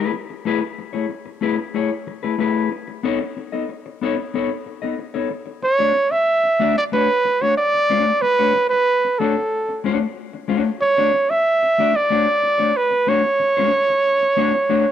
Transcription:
Already playing: clean electric guitar A3 E4 G#4 B4
0.14 muted clean electric guitar stroke
0.30 muted clean electric guitar stroke
0.45 clean electric guitar A3 E4 G#4 B4
0.62 muted clean electric guitar stroke
0.78 muted clean electric guitar stroke
0.93 clean electric guitar A3 E4 G#4 C#5
1.09 muted clean electric guitar stroke
1.26 muted clean electric guitar stroke
1.41 clean electric guitar A3 E4 G#4 B4
1.58 muted clean electric guitar stroke
1.74 clean electric guitar A3 E4 G#4 C#5
2.07 muted clean electric guitar stroke
2.23 clean electric guitar A3 E4 G#4 B4
2.38 clean electric guitar A3 E4 G#4 B4
2.71 muted clean electric guitar stroke
2.87 muted clean electric guitar stroke
3.03 clean electric guitar B3 D#4 A4 C#5
3.21 muted clean electric guitar stroke
3.37 muted clean electric guitar stroke
3.52 clean electric guitar B3 D#4 A4 D#5
3.69 muted clean electric guitar stroke
3.86 muted clean electric guitar stroke
4.01 clean electric guitar B3 D#4 A4 C#5
4.18 muted clean electric guitar stroke
4.34 clean electric guitar B3 D#4 A4 C#5
4.66 muted clean electric guitar stroke
4.82 clean electric guitar B3 D#4 A4 D#5
4.99 muted clean electric guitar stroke
5.14 clean electric guitar B3 D#4 A4 C#5
5.31 muted clean electric guitar stroke
5.46 muted clean electric guitar stroke
5.62 trumpet C#5, muted clean electric guitar stroke
5.79 clean electric guitar A3 D4 F#4 D5
5.95 muted clean electric guitar stroke
6.11 trumpet E5, muted clean electric guitar stroke
6.43 muted clean electric guitar stroke
6.59 clean electric guitar A3 D4 F#4 D5
6.76 trumpet D5, muted clean electric guitar stroke
6.92 clean electric guitar A3 D4 F#4 C#5, trumpet B4
7.25 muted clean electric guitar stroke
7.41 clean electric guitar A3 D4 F#4 C#5, trumpet C#5
7.57 trumpet D5
7.74 muted clean electric guitar stroke
7.90 clean electric guitar A3 D4 F#4 C#5
8.07 muted clean electric guitar stroke
8.22 trumpet B4, muted clean electric guitar stroke
8.39 clean electric guitar A3 D4 F#4 C#5
8.55 muted clean electric guitar stroke
8.69 trumpet B4, muted clean electric guitar stroke
9.04 muted clean electric guitar stroke
9.19 clean electric guitar A3 D4 F#4 C#5, trumpet A4
9.39 muted clean electric guitar stroke
9.69 muted clean electric guitar stroke
9.84 clean electric guitar A3 D4 F#4 C#5
10.00 muted clean electric guitar stroke
10.33 muted clean electric guitar stroke
10.48 clean electric guitar A3 D4 F#4 C#5
10.64 muted clean electric guitar stroke
10.82 trumpet C#5, muted clean electric guitar stroke
10.97 clean electric guitar A3 D4 F#4 D5
11.14 muted clean electric guitar stroke
11.30 trumpet E5, muted clean electric guitar stroke
11.63 muted clean electric guitar stroke
11.78 clean electric guitar A3 D4 F#4 D5
11.94 trumpet D5, muted clean electric guitar stroke
12.10 clean electric guitar A3 D4 F#4 C#5
12.43 muted clean electric guitar stroke
12.58 clean electric guitar A3 D4 F#4 C#5
12.77 trumpet B4
12.91 muted clean electric guitar stroke
13.07 clean electric guitar A3 D4 F#4 C#5, trumpet C#5
13.23 muted clean electric guitar stroke
13.40 muted clean electric guitar stroke
13.57 clean electric guitar A3 D4 F#4 C#5
13.73 muted clean electric guitar stroke
13.89 muted clean electric guitar stroke
14.21 muted clean electric guitar stroke
14.37 clean electric guitar A3 D4 F#4 C#5
14.54 muted clean electric guitar stroke
14.69 clean electric guitar A3 D4 F#4 C#5

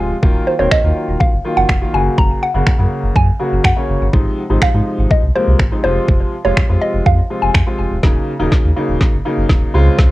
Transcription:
Already playing: grand piano C3 F3 G#3 F4
0.00 sub bass D1
0.23 sub bass D#1, grand piano D#3 F#3 A#3 F4, kick
0.47 synth pluck C5
0.59 sub bass D#1, grand piano D#3 F#3 A#3 C4, synth pluck C#5
0.71 sub bass D#2, synth pluck D#5, finger snap, kick
0.84 sub bass D#2, grand piano D#3 F#3 A#3 F4
1.08 sub bass D#1
1.20 synth pluck F5, kick
1.33 sub bass F#1
1.45 grand piano D#3 F#3 A#3 F4
1.57 sub bass F#1, synth pluck F#5
1.69 sub bass F1, finger snap, kick
1.81 grand piano D#3 F#3 A#3 F4
1.93 sub bass F#1, grand piano C#3 F#3 A#3 F#4, synth pluck G#5
2.18 sub bass F#1, synth pluck A#5, kick
2.43 synth pluck F#5
2.54 sub bass F#1, grand piano C#3 F#3 A#3 F#4
2.67 sub bass F#2, finger snap, kick
2.79 sub bass F#2, grand piano C#3 F#3 A#3 F#4
3.03 sub bass F#1
3.16 sub bass F#2, synth pluck G#5, kick
3.39 grand piano C#3 F#3 A#3 F#4
3.52 sub bass F#1
3.64 sub bass F#2, synth pluck F#5, finger snap, kick
3.76 grand piano C#3 F#3 A#3 C#4
3.89 sub bass F#1
4.01 sub bass G1
4.13 sub bass G#1, grand piano C3 F3 G#3 D#4, kick
4.50 sub bass G#1, grand piano C3 F3 G#3 D#4
4.62 sub bass G#2, synth pluck F5, finger snap, kick
4.74 sub bass G#2, grand piano C3 F3 G#3 D#4
4.98 sub bass G#1
5.11 synth pluck D#5, kick
5.23 sub bass C2
5.35 grand piano C3 F3 G#3 A#3, synth pluck C5
5.47 sub bass C2
5.59 sub bass G#1, finger snap, kick
5.72 grand piano C3 F3 G#3 D#4
5.84 sub bass F1, grand piano C3 F3 G#3 F4, synth pluck C5
6.08 sub bass F1, kick
6.45 sub bass F1, grand piano C3 F3 G#3 F4, synth pluck C#5
6.57 sub bass F2, finger snap, kick
6.69 sub bass F2, grand piano C3 F3 G#3 F4
6.81 synth pluck D#5
6.94 sub bass F1
7.06 sub bass F2, synth pluck F5, kick
7.30 grand piano C3 F3 G#3 F4
7.42 sub bass F1, synth pluck G#5
7.54 sub bass F2, finger snap, kick
7.67 grand piano C3 F3 G#3 F4
7.79 sub bass F1
7.91 sub bass D1
8.03 sub bass D#1, grand piano C#3 F#3 A#3 D#4, kick, snare
8.40 sub bass D#1, grand piano C#3 F#3 A#3 D#4
8.52 sub bass D#2, kick, snare
8.65 sub bass D#2
8.76 grand piano C#3 F#3 A#3 D#4
8.89 sub bass D#1
9.01 kick, snare
9.13 sub bass F#1
9.25 grand piano C#3 F#3 A#3 D#4
9.38 sub bass F#1
9.49 sub bass D#1, kick, snare
9.74 sub bass C#2, grand piano C#3 G#3 C4 F4
9.98 sub bass C#2, kick, snare

